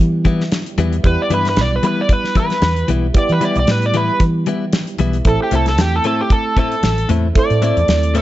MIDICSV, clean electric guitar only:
0, 0, Header, 1, 2, 480
1, 0, Start_track
1, 0, Key_signature, 1, "minor"
1, 0, Tempo, 525855
1, 955, Time_signature, 4, 2, 24, 8
1, 7500, End_track
2, 0, Start_track
2, 0, Title_t, "Clean electric guitar"
2, 0, Program_c, 0, 27
2, 227, Note_on_c, 0, 52, 98
2, 234, Note_on_c, 0, 55, 85
2, 241, Note_on_c, 0, 59, 105
2, 245, Note_on_c, 0, 64, 95
2, 386, Note_off_c, 0, 52, 0
2, 389, Note_off_c, 0, 55, 0
2, 393, Note_off_c, 0, 59, 0
2, 395, Note_off_c, 0, 64, 0
2, 713, Note_on_c, 0, 52, 107
2, 719, Note_on_c, 0, 55, 101
2, 727, Note_on_c, 0, 59, 102
2, 733, Note_on_c, 0, 64, 100
2, 870, Note_off_c, 0, 52, 0
2, 873, Note_off_c, 0, 55, 0
2, 876, Note_off_c, 0, 59, 0
2, 879, Note_off_c, 0, 64, 0
2, 1191, Note_on_c, 0, 52, 81
2, 1197, Note_on_c, 0, 55, 80
2, 1205, Note_on_c, 0, 59, 84
2, 1209, Note_on_c, 0, 64, 80
2, 1348, Note_off_c, 0, 52, 0
2, 1352, Note_off_c, 0, 55, 0
2, 1356, Note_off_c, 0, 59, 0
2, 1357, Note_off_c, 0, 64, 0
2, 1671, Note_on_c, 0, 52, 72
2, 1678, Note_on_c, 0, 55, 81
2, 1683, Note_on_c, 0, 59, 79
2, 1688, Note_on_c, 0, 64, 83
2, 1829, Note_off_c, 0, 52, 0
2, 1832, Note_off_c, 0, 55, 0
2, 1835, Note_off_c, 0, 59, 0
2, 1837, Note_off_c, 0, 64, 0
2, 2152, Note_on_c, 0, 52, 77
2, 2158, Note_on_c, 0, 55, 75
2, 2165, Note_on_c, 0, 59, 85
2, 2169, Note_on_c, 0, 64, 86
2, 2309, Note_off_c, 0, 52, 0
2, 2312, Note_off_c, 0, 55, 0
2, 2316, Note_off_c, 0, 59, 0
2, 2318, Note_off_c, 0, 64, 0
2, 2632, Note_on_c, 0, 52, 85
2, 2639, Note_on_c, 0, 55, 83
2, 2645, Note_on_c, 0, 59, 89
2, 2651, Note_on_c, 0, 64, 87
2, 2789, Note_off_c, 0, 52, 0
2, 2793, Note_off_c, 0, 55, 0
2, 2796, Note_off_c, 0, 59, 0
2, 2799, Note_off_c, 0, 64, 0
2, 3112, Note_on_c, 0, 52, 81
2, 3120, Note_on_c, 0, 55, 83
2, 3126, Note_on_c, 0, 59, 70
2, 3132, Note_on_c, 0, 64, 88
2, 3269, Note_off_c, 0, 52, 0
2, 3273, Note_off_c, 0, 55, 0
2, 3276, Note_off_c, 0, 59, 0
2, 3280, Note_off_c, 0, 64, 0
2, 3597, Note_on_c, 0, 52, 63
2, 3603, Note_on_c, 0, 55, 74
2, 3609, Note_on_c, 0, 59, 76
2, 3615, Note_on_c, 0, 64, 76
2, 3752, Note_off_c, 0, 52, 0
2, 3755, Note_off_c, 0, 55, 0
2, 3758, Note_off_c, 0, 59, 0
2, 3761, Note_off_c, 0, 64, 0
2, 4079, Note_on_c, 0, 52, 83
2, 4085, Note_on_c, 0, 55, 82
2, 4091, Note_on_c, 0, 59, 81
2, 4096, Note_on_c, 0, 64, 94
2, 4233, Note_off_c, 0, 52, 0
2, 4236, Note_off_c, 0, 55, 0
2, 4239, Note_off_c, 0, 59, 0
2, 4242, Note_off_c, 0, 64, 0
2, 4554, Note_on_c, 0, 52, 83
2, 4561, Note_on_c, 0, 55, 98
2, 4566, Note_on_c, 0, 59, 98
2, 4572, Note_on_c, 0, 64, 102
2, 4710, Note_off_c, 0, 52, 0
2, 4714, Note_off_c, 0, 55, 0
2, 4717, Note_off_c, 0, 59, 0
2, 4719, Note_off_c, 0, 64, 0
2, 5035, Note_on_c, 0, 45, 69
2, 5043, Note_on_c, 0, 57, 71
2, 5050, Note_on_c, 0, 60, 84
2, 5053, Note_on_c, 0, 64, 84
2, 5191, Note_off_c, 0, 45, 0
2, 5195, Note_off_c, 0, 57, 0
2, 5198, Note_off_c, 0, 60, 0
2, 5200, Note_off_c, 0, 64, 0
2, 5516, Note_on_c, 0, 45, 67
2, 5523, Note_on_c, 0, 57, 82
2, 5529, Note_on_c, 0, 60, 76
2, 5535, Note_on_c, 0, 64, 73
2, 5671, Note_off_c, 0, 45, 0
2, 5675, Note_off_c, 0, 57, 0
2, 5678, Note_off_c, 0, 60, 0
2, 5681, Note_off_c, 0, 64, 0
2, 5995, Note_on_c, 0, 45, 70
2, 6002, Note_on_c, 0, 57, 73
2, 6006, Note_on_c, 0, 60, 81
2, 6015, Note_on_c, 0, 64, 90
2, 6151, Note_off_c, 0, 45, 0
2, 6154, Note_off_c, 0, 57, 0
2, 6156, Note_off_c, 0, 60, 0
2, 6161, Note_off_c, 0, 64, 0
2, 6472, Note_on_c, 0, 45, 89
2, 6479, Note_on_c, 0, 57, 92
2, 6485, Note_on_c, 0, 60, 92
2, 6491, Note_on_c, 0, 64, 91
2, 6629, Note_off_c, 0, 45, 0
2, 6633, Note_off_c, 0, 57, 0
2, 6636, Note_off_c, 0, 60, 0
2, 6639, Note_off_c, 0, 64, 0
2, 6954, Note_on_c, 0, 45, 75
2, 6959, Note_on_c, 0, 57, 80
2, 6965, Note_on_c, 0, 60, 74
2, 6973, Note_on_c, 0, 64, 79
2, 7110, Note_off_c, 0, 45, 0
2, 7113, Note_off_c, 0, 57, 0
2, 7116, Note_off_c, 0, 60, 0
2, 7120, Note_off_c, 0, 64, 0
2, 7431, Note_on_c, 0, 45, 71
2, 7438, Note_on_c, 0, 57, 74
2, 7444, Note_on_c, 0, 60, 78
2, 7450, Note_on_c, 0, 64, 83
2, 7500, Note_off_c, 0, 45, 0
2, 7500, Note_off_c, 0, 57, 0
2, 7500, Note_off_c, 0, 60, 0
2, 7500, Note_off_c, 0, 64, 0
2, 7500, End_track
0, 0, End_of_file